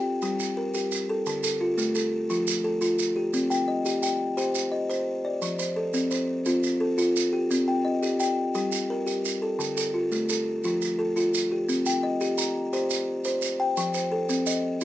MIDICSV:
0, 0, Header, 1, 3, 480
1, 0, Start_track
1, 0, Tempo, 347423
1, 1739, Time_signature, 12, 3, 24, 8
1, 20503, End_track
2, 0, Start_track
2, 0, Title_t, "Kalimba"
2, 0, Program_c, 0, 108
2, 0, Note_on_c, 0, 79, 57
2, 311, Note_on_c, 0, 55, 76
2, 313, Note_on_c, 0, 67, 63
2, 545, Note_off_c, 0, 79, 0
2, 786, Note_off_c, 0, 55, 0
2, 789, Note_on_c, 0, 70, 67
2, 1010, Note_off_c, 0, 67, 0
2, 1027, Note_on_c, 0, 67, 75
2, 1502, Note_off_c, 0, 67, 0
2, 1503, Note_off_c, 0, 70, 0
2, 1512, Note_on_c, 0, 69, 68
2, 1752, Note_on_c, 0, 50, 78
2, 1961, Note_off_c, 0, 69, 0
2, 1978, Note_on_c, 0, 69, 59
2, 2221, Note_on_c, 0, 65, 65
2, 2224, Note_off_c, 0, 50, 0
2, 2454, Note_on_c, 0, 57, 81
2, 2676, Note_off_c, 0, 69, 0
2, 2693, Note_on_c, 0, 69, 61
2, 2934, Note_off_c, 0, 57, 0
2, 2937, Note_off_c, 0, 65, 0
2, 3175, Note_on_c, 0, 53, 71
2, 3176, Note_on_c, 0, 65, 62
2, 3412, Note_off_c, 0, 69, 0
2, 3651, Note_on_c, 0, 69, 65
2, 3653, Note_off_c, 0, 53, 0
2, 3870, Note_off_c, 0, 65, 0
2, 3887, Note_on_c, 0, 65, 73
2, 4364, Note_on_c, 0, 67, 63
2, 4369, Note_off_c, 0, 65, 0
2, 4370, Note_off_c, 0, 69, 0
2, 4608, Note_on_c, 0, 60, 81
2, 4840, Note_on_c, 0, 79, 58
2, 4847, Note_off_c, 0, 67, 0
2, 5082, Note_on_c, 0, 75, 60
2, 5088, Note_off_c, 0, 60, 0
2, 5326, Note_on_c, 0, 67, 79
2, 5545, Note_off_c, 0, 79, 0
2, 5561, Note_on_c, 0, 79, 58
2, 5805, Note_off_c, 0, 75, 0
2, 5807, Note_off_c, 0, 67, 0
2, 6039, Note_on_c, 0, 72, 68
2, 6041, Note_on_c, 0, 67, 77
2, 6284, Note_off_c, 0, 79, 0
2, 6515, Note_on_c, 0, 75, 65
2, 6525, Note_off_c, 0, 67, 0
2, 6746, Note_off_c, 0, 72, 0
2, 6763, Note_on_c, 0, 72, 74
2, 7242, Note_off_c, 0, 75, 0
2, 7246, Note_off_c, 0, 72, 0
2, 7249, Note_on_c, 0, 74, 64
2, 7486, Note_on_c, 0, 53, 80
2, 7721, Note_on_c, 0, 72, 63
2, 7729, Note_off_c, 0, 74, 0
2, 7961, Note_on_c, 0, 69, 61
2, 7967, Note_off_c, 0, 53, 0
2, 8204, Note_on_c, 0, 60, 82
2, 8423, Note_off_c, 0, 72, 0
2, 8440, Note_on_c, 0, 72, 58
2, 8685, Note_off_c, 0, 69, 0
2, 8687, Note_off_c, 0, 60, 0
2, 8926, Note_on_c, 0, 60, 78
2, 8926, Note_on_c, 0, 65, 62
2, 9165, Note_off_c, 0, 72, 0
2, 9399, Note_on_c, 0, 69, 70
2, 9408, Note_off_c, 0, 60, 0
2, 9625, Note_off_c, 0, 65, 0
2, 9641, Note_on_c, 0, 65, 79
2, 10121, Note_on_c, 0, 67, 66
2, 10125, Note_off_c, 0, 69, 0
2, 10126, Note_off_c, 0, 65, 0
2, 10370, Note_on_c, 0, 60, 83
2, 10607, Note_off_c, 0, 67, 0
2, 10608, Note_on_c, 0, 79, 55
2, 10840, Note_on_c, 0, 75, 63
2, 10852, Note_off_c, 0, 60, 0
2, 11087, Note_on_c, 0, 67, 78
2, 11310, Note_off_c, 0, 79, 0
2, 11326, Note_on_c, 0, 79, 61
2, 11568, Note_off_c, 0, 75, 0
2, 11571, Note_off_c, 0, 67, 0
2, 11811, Note_on_c, 0, 55, 70
2, 11811, Note_on_c, 0, 67, 66
2, 12051, Note_off_c, 0, 79, 0
2, 12294, Note_off_c, 0, 55, 0
2, 12298, Note_on_c, 0, 70, 70
2, 12506, Note_off_c, 0, 67, 0
2, 12523, Note_on_c, 0, 67, 72
2, 13011, Note_off_c, 0, 67, 0
2, 13016, Note_on_c, 0, 69, 61
2, 13018, Note_off_c, 0, 70, 0
2, 13247, Note_on_c, 0, 50, 81
2, 13477, Note_off_c, 0, 69, 0
2, 13494, Note_on_c, 0, 69, 56
2, 13732, Note_on_c, 0, 65, 59
2, 13734, Note_off_c, 0, 50, 0
2, 13977, Note_on_c, 0, 57, 75
2, 14213, Note_off_c, 0, 69, 0
2, 14229, Note_on_c, 0, 69, 58
2, 14457, Note_off_c, 0, 65, 0
2, 14459, Note_off_c, 0, 57, 0
2, 14704, Note_on_c, 0, 65, 64
2, 14707, Note_on_c, 0, 53, 72
2, 14946, Note_off_c, 0, 69, 0
2, 15180, Note_on_c, 0, 69, 63
2, 15185, Note_off_c, 0, 53, 0
2, 15403, Note_off_c, 0, 65, 0
2, 15420, Note_on_c, 0, 65, 75
2, 15902, Note_off_c, 0, 65, 0
2, 15903, Note_off_c, 0, 69, 0
2, 15906, Note_on_c, 0, 67, 63
2, 16144, Note_on_c, 0, 60, 75
2, 16385, Note_off_c, 0, 67, 0
2, 16390, Note_on_c, 0, 79, 60
2, 16624, Note_on_c, 0, 75, 62
2, 16625, Note_off_c, 0, 60, 0
2, 16866, Note_on_c, 0, 67, 84
2, 17103, Note_on_c, 0, 82, 60
2, 17108, Note_off_c, 0, 79, 0
2, 17345, Note_off_c, 0, 75, 0
2, 17346, Note_off_c, 0, 67, 0
2, 17587, Note_on_c, 0, 72, 69
2, 17589, Note_on_c, 0, 67, 78
2, 17825, Note_off_c, 0, 82, 0
2, 18068, Note_off_c, 0, 67, 0
2, 18294, Note_off_c, 0, 72, 0
2, 18310, Note_on_c, 0, 72, 77
2, 18786, Note_on_c, 0, 79, 68
2, 18789, Note_off_c, 0, 72, 0
2, 19030, Note_on_c, 0, 53, 88
2, 19266, Note_off_c, 0, 79, 0
2, 19269, Note_on_c, 0, 72, 63
2, 19504, Note_on_c, 0, 69, 64
2, 19509, Note_off_c, 0, 53, 0
2, 19746, Note_on_c, 0, 60, 81
2, 19986, Note_on_c, 0, 75, 64
2, 19988, Note_off_c, 0, 72, 0
2, 20226, Note_off_c, 0, 69, 0
2, 20227, Note_off_c, 0, 60, 0
2, 20503, Note_off_c, 0, 75, 0
2, 20503, End_track
3, 0, Start_track
3, 0, Title_t, "Drums"
3, 301, Note_on_c, 9, 70, 59
3, 439, Note_off_c, 9, 70, 0
3, 546, Note_on_c, 9, 70, 70
3, 684, Note_off_c, 9, 70, 0
3, 1025, Note_on_c, 9, 70, 56
3, 1163, Note_off_c, 9, 70, 0
3, 1267, Note_on_c, 9, 70, 77
3, 1405, Note_off_c, 9, 70, 0
3, 1742, Note_on_c, 9, 70, 66
3, 1880, Note_off_c, 9, 70, 0
3, 1982, Note_on_c, 9, 70, 73
3, 2120, Note_off_c, 9, 70, 0
3, 2463, Note_on_c, 9, 70, 61
3, 2601, Note_off_c, 9, 70, 0
3, 2695, Note_on_c, 9, 70, 72
3, 2833, Note_off_c, 9, 70, 0
3, 3177, Note_on_c, 9, 70, 55
3, 3315, Note_off_c, 9, 70, 0
3, 3418, Note_on_c, 9, 70, 76
3, 3556, Note_off_c, 9, 70, 0
3, 3888, Note_on_c, 9, 70, 55
3, 4026, Note_off_c, 9, 70, 0
3, 4128, Note_on_c, 9, 70, 66
3, 4266, Note_off_c, 9, 70, 0
3, 4608, Note_on_c, 9, 70, 57
3, 4746, Note_off_c, 9, 70, 0
3, 4851, Note_on_c, 9, 70, 65
3, 4989, Note_off_c, 9, 70, 0
3, 5326, Note_on_c, 9, 70, 52
3, 5464, Note_off_c, 9, 70, 0
3, 5565, Note_on_c, 9, 70, 68
3, 5704, Note_off_c, 9, 70, 0
3, 6048, Note_on_c, 9, 70, 59
3, 6186, Note_off_c, 9, 70, 0
3, 6283, Note_on_c, 9, 70, 68
3, 6421, Note_off_c, 9, 70, 0
3, 6774, Note_on_c, 9, 70, 51
3, 6912, Note_off_c, 9, 70, 0
3, 7488, Note_on_c, 9, 70, 56
3, 7626, Note_off_c, 9, 70, 0
3, 7724, Note_on_c, 9, 70, 66
3, 7862, Note_off_c, 9, 70, 0
3, 8202, Note_on_c, 9, 70, 57
3, 8340, Note_off_c, 9, 70, 0
3, 8442, Note_on_c, 9, 70, 70
3, 8580, Note_off_c, 9, 70, 0
3, 8919, Note_on_c, 9, 70, 56
3, 9057, Note_off_c, 9, 70, 0
3, 9165, Note_on_c, 9, 70, 65
3, 9303, Note_off_c, 9, 70, 0
3, 9649, Note_on_c, 9, 70, 55
3, 9788, Note_off_c, 9, 70, 0
3, 9895, Note_on_c, 9, 70, 71
3, 10033, Note_off_c, 9, 70, 0
3, 10376, Note_on_c, 9, 70, 61
3, 10514, Note_off_c, 9, 70, 0
3, 11091, Note_on_c, 9, 70, 59
3, 11230, Note_off_c, 9, 70, 0
3, 11327, Note_on_c, 9, 70, 76
3, 11465, Note_off_c, 9, 70, 0
3, 11807, Note_on_c, 9, 70, 59
3, 11946, Note_off_c, 9, 70, 0
3, 12047, Note_on_c, 9, 70, 70
3, 12185, Note_off_c, 9, 70, 0
3, 12536, Note_on_c, 9, 70, 51
3, 12674, Note_off_c, 9, 70, 0
3, 12780, Note_on_c, 9, 70, 65
3, 12918, Note_off_c, 9, 70, 0
3, 13267, Note_on_c, 9, 70, 58
3, 13405, Note_off_c, 9, 70, 0
3, 13500, Note_on_c, 9, 70, 74
3, 13638, Note_off_c, 9, 70, 0
3, 13979, Note_on_c, 9, 70, 57
3, 14117, Note_off_c, 9, 70, 0
3, 14218, Note_on_c, 9, 70, 71
3, 14356, Note_off_c, 9, 70, 0
3, 14698, Note_on_c, 9, 70, 54
3, 14836, Note_off_c, 9, 70, 0
3, 14944, Note_on_c, 9, 70, 70
3, 15083, Note_off_c, 9, 70, 0
3, 15427, Note_on_c, 9, 70, 57
3, 15565, Note_off_c, 9, 70, 0
3, 15669, Note_on_c, 9, 70, 72
3, 15807, Note_off_c, 9, 70, 0
3, 16152, Note_on_c, 9, 70, 61
3, 16290, Note_off_c, 9, 70, 0
3, 16386, Note_on_c, 9, 70, 76
3, 16524, Note_off_c, 9, 70, 0
3, 16868, Note_on_c, 9, 70, 59
3, 17006, Note_off_c, 9, 70, 0
3, 17104, Note_on_c, 9, 70, 75
3, 17242, Note_off_c, 9, 70, 0
3, 17590, Note_on_c, 9, 70, 55
3, 17728, Note_off_c, 9, 70, 0
3, 17826, Note_on_c, 9, 70, 67
3, 17964, Note_off_c, 9, 70, 0
3, 18298, Note_on_c, 9, 70, 54
3, 18436, Note_off_c, 9, 70, 0
3, 18538, Note_on_c, 9, 70, 68
3, 18676, Note_off_c, 9, 70, 0
3, 19023, Note_on_c, 9, 70, 59
3, 19161, Note_off_c, 9, 70, 0
3, 19259, Note_on_c, 9, 70, 70
3, 19397, Note_off_c, 9, 70, 0
3, 19747, Note_on_c, 9, 70, 60
3, 19885, Note_off_c, 9, 70, 0
3, 19985, Note_on_c, 9, 70, 76
3, 20123, Note_off_c, 9, 70, 0
3, 20460, Note_on_c, 9, 70, 57
3, 20503, Note_off_c, 9, 70, 0
3, 20503, End_track
0, 0, End_of_file